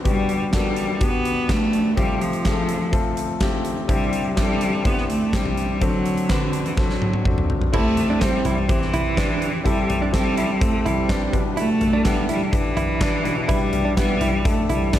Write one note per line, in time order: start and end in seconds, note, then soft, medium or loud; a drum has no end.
0.04 1.93 G1 medium
0.04 1.93 G2 medium
0.04 0.48 B3 medium
0.04 0.48 D4 medium
0.04 0.48 F#4 medium
0.04 0.48 G4 medium
0.04 kick loud
0.04 closed hi-hat medium
0.08 0.52 G3 medium
0.29 closed hi-hat medium
0.52 1.05 G3 medium
0.52 0.58 A#3 medium
0.52 0.96 D4 medium
0.52 0.96 F#4 medium
0.52 0.96 A4 medium
0.52 kick medium
0.52 snare loud
0.52 clap medium
0.52 closed hi-hat medium
0.57 0.98 B3 medium
0.76 closed hi-hat medium
1.00 1.44 B3 medium
1.00 1.52 B3 medium
1.00 1.44 D4 medium
1.00 1.44 F#4 medium
1.00 1.44 G4 medium
1.00 kick loud
1.00 closed hi-hat medium
1.25 closed hi-hat medium
1.48 1.98 A3 medium
1.48 1.92 B3 medium
1.48 1.92 D4 medium
1.48 1.92 F#4 medium
1.48 1.92 G4 medium
1.48 kick medium
1.48 snare loud
1.48 clap medium
1.48 closed hi-hat medium
1.73 closed hi-hat soft
1.96 3.85 F1 medium
1.96 3.85 F2 medium
1.96 2.23 G3 medium
1.96 2.40 A3 medium
1.96 2.40 C4 medium
1.96 2.40 F4 medium
1.96 2.40 G4 loud
1.96 kick medium
1.96 closed hi-hat medium
2.21 3.17 F3 medium
2.21 closed hi-hat soft
2.33 closed hi-hat soft
2.44 2.88 A3 medium
2.44 2.88 C4 medium
2.44 2.88 F4 medium
2.44 2.51 G#4 medium
2.44 kick medium
2.44 snare loud
2.44 clap medium
2.44 closed hi-hat medium
2.51 2.91 A4 medium
2.69 closed hi-hat medium
2.91 3.35 A3 medium
2.91 3.36 C4 medium
2.91 3.36 F4 medium
2.91 3.36 A4 loud
2.91 kick loud
2.91 closed hi-hat medium
3.17 closed hi-hat medium
3.40 3.84 A3 medium
3.40 3.84 C4 medium
3.40 3.84 F4 medium
3.40 3.84 G4 medium
3.40 kick medium
3.40 snare loud
3.40 clap medium
3.40 closed hi-hat medium
3.65 closed hi-hat medium
3.88 5.77 C2 medium
3.88 5.77 C3 medium
3.88 4.34 G3 medium
3.88 4.32 C4 medium
3.88 4.32 D4 medium
3.88 4.32 E4 medium
3.88 4.32 G4 medium
3.88 kick medium
3.88 closed hi-hat medium
4.13 closed hi-hat medium
4.36 4.88 G3 loud
4.36 4.80 C4 medium
4.36 4.80 D4 medium
4.36 4.80 E4 medium
4.36 4.43 G4 medium
4.36 kick medium
4.36 snare medium
4.36 clap medium
4.36 closed hi-hat medium
4.43 4.83 A4 medium
4.61 closed hi-hat medium
4.84 5.09 B3 medium
4.84 5.27 C4 medium
4.84 5.28 D4 medium
4.84 5.28 E4 medium
4.84 5.28 G4 medium
4.84 kick loud
4.84 closed hi-hat medium
4.98 snare soft
5.09 5.37 A3 medium
5.09 closed hi-hat medium
5.33 5.84 G3 medium
5.33 5.76 C4 medium
5.33 5.76 D4 medium
5.33 5.76 E4 soft
5.33 5.76 G4 medium
5.33 kick medium
5.33 snare loud
5.33 clap medium
5.33 closed hi-hat medium
5.46 floor tom medium
5.57 closed hi-hat medium
5.81 7.70 D2 medium
5.81 7.70 D3 medium
5.81 6.33 F#3 loud
5.81 6.24 C4 medium
5.81 6.24 D4 medium
5.81 6.25 F#4 medium
5.81 6.25 A4 medium
5.81 kick medium
5.81 closed hi-hat medium
6.06 closed hi-hat medium
6.17 closed hi-hat soft
6.29 6.68 D3 medium
6.29 6.72 C4 medium
6.29 6.72 D4 medium
6.29 6.73 F#4 medium
6.29 6.73 B4 medium
6.29 kick medium
6.29 snare medium
6.29 clap medium
6.29 closed hi-hat medium
6.53 closed hi-hat medium
6.66 6.78 E3 medium
6.66 closed hi-hat soft
6.77 7.46 F#3 medium
6.77 7.20 C4 medium
6.77 7.20 D4 medium
6.77 7.20 F#4 medium
6.77 7.21 A4 medium
6.77 kick loud
6.77 snare medium
6.89 snare soft
7.02 high tom medium
7.14 high tom medium
7.25 7.68 C4 medium
7.25 7.68 D4 medium
7.25 7.68 F#4 medium
7.25 7.69 A4 medium
7.25 kick medium
7.25 mid tom medium
7.38 mid tom medium
7.50 floor tom medium
7.62 floor tom medium
7.73 9.61 C2 medium
7.73 9.61 C3 medium
7.73 8.24 A3 medium
7.73 8.16 C4 medium
7.73 8.16 E4 medium
7.73 7.85 E4 loud
7.73 8.16 G4 medium
7.73 8.17 A4 medium
7.73 kick loud
7.73 crash medium
7.97 closed hi-hat medium
7.97 floor tom medium
8.10 8.21 D4 medium
8.20 8.46 G3 medium
8.20 8.64 C4 medium
8.20 8.44 C4 medium
8.20 8.64 E4 medium
8.20 8.64 G4 medium
8.20 8.64 C5 medium
8.20 kick medium
8.20 snare loud
8.20 clap medium
8.20 closed hi-hat medium
8.45 8.72 G3 medium
8.45 8.57 E4 medium
8.45 closed hi-hat medium
8.45 floor tom medium
8.68 9.65 E3 medium
8.68 9.12 C4 medium
8.68 9.12 E4 medium
8.68 9.12 G4 medium
8.68 9.12 C5 medium
8.68 kick loud
8.68 closed hi-hat medium
8.82 snare soft
8.93 9.16 E4 medium
8.93 closed hi-hat medium
8.93 floor tom medium
9.16 9.60 C4 medium
9.16 9.51 D4 medium
9.16 9.60 E4 medium
9.16 9.60 G4 medium
9.16 9.60 B4 medium
9.16 kick loud
9.16 snare loud
9.16 clap medium
9.16 closed hi-hat medium
9.42 closed hi-hat medium
9.64 11.29 C2 medium
9.64 11.29 C3 medium
9.64 10.10 G3 medium
9.64 10.07 C4 medium
9.64 10.08 E4 medium
9.64 9.77 E4 medium
9.64 10.08 G4 medium
9.64 10.08 A4 medium
9.64 kick medium
9.64 closed hi-hat medium
9.90 closed hi-hat medium
9.90 floor tom medium
10.02 10.13 D4 medium
10.12 10.64 G3 loud
10.12 10.56 C4 medium
10.12 10.36 C4 medium
10.12 10.56 E4 medium
10.12 10.56 G4 medium
10.12 10.56 A4 medium
10.12 kick loud
10.12 snare loud
10.12 clap medium
10.12 closed hi-hat medium
10.37 10.49 E4 medium
10.37 closed hi-hat medium
10.60 10.88 A3 medium
10.60 11.04 C4 medium
10.60 11.04 E4 medium
10.60 11.04 G4 medium
10.60 11.04 A4 medium
10.60 kick loud
10.60 closed hi-hat medium
10.86 11.34 G3 medium
10.86 11.08 E4 medium
10.86 closed hi-hat medium
10.86 floor tom medium
11.08 11.33 C4 medium
11.08 11.43 D4 medium
11.08 11.31 E4 medium
11.08 11.31 G4 medium
11.08 11.32 B4 medium
11.08 kick medium
11.08 snare loud
11.08 clap medium
11.08 closed hi-hat medium
11.32 13.21 B1 medium
11.32 13.21 B2 medium
11.32 11.97 D4 medium
11.32 11.97 E4 medium
11.32 11.98 G4 medium
11.32 11.98 B4 medium
11.32 kick medium
11.32 closed hi-hat medium
11.57 12.07 A3 loud
11.57 11.69 E4 loud
11.57 closed hi-hat medium
11.81 closed hi-hat medium
11.81 floor tom medium
11.93 12.05 D4 medium
12.04 12.29 G3 loud
12.04 12.28 B3 medium
12.04 12.48 D4 medium
12.04 12.48 E4 medium
12.04 12.48 G4 medium
12.04 12.48 A4 medium
12.04 kick loud
12.04 snare loud
12.04 clap medium
12.04 closed hi-hat loud
12.29 12.56 G3 medium
12.29 12.41 E4 medium
12.29 closed hi-hat medium
12.52 13.51 E3 medium
12.52 12.96 D4 medium
12.52 12.96 E4 medium
12.52 12.96 G4 medium
12.52 12.96 B4 medium
12.52 kick loud
12.52 closed hi-hat medium
12.77 13.00 E4 medium
12.77 closed hi-hat medium
12.77 floor tom medium
13.00 13.44 D4 medium
13.00 13.35 D4 medium
13.00 13.44 E4 medium
13.00 13.44 G4 medium
13.00 13.44 B4 medium
13.00 kick loud
13.00 snare loud
13.00 clap medium
13.00 closed hi-hat medium
13.24 14.99 B1 medium
13.24 14.99 B2 medium
13.24 closed hi-hat medium
13.47 13.98 G3 medium
13.47 13.91 D4 medium
13.47 13.92 E4 medium
13.47 13.60 E4 medium
13.47 13.92 G4 medium
13.47 13.92 B4 medium
13.47 kick loud
13.47 closed hi-hat medium
13.73 closed hi-hat medium
13.73 floor tom medium
13.85 13.97 D4 medium
13.95 14.49 G3 loud
13.95 14.20 B3 medium
13.95 14.40 D4 medium
13.95 14.40 E4 medium
13.95 14.40 G4 medium
13.95 14.40 B4 medium
13.95 kick loud
13.95 snare loud
13.95 clap medium
13.95 closed hi-hat medium
14.21 14.33 E4 medium
14.21 closed hi-hat medium
14.21 floor tom medium
14.44 14.71 A3 medium
14.44 14.88 D4 medium
14.44 14.88 E4 medium
14.44 14.88 G4 medium
14.44 14.88 A4 medium
14.44 kick loud
14.44 closed hi-hat medium
14.70 14.99 G3 medium
14.70 14.93 E4 medium
14.70 closed hi-hat medium
14.70 floor tom medium
14.92 14.99 D4 medium
14.92 14.99 E4 medium
14.92 14.99 G4 medium
14.92 14.99 B4 medium
14.92 kick loud
14.92 snare loud
14.92 clap medium
14.92 closed hi-hat medium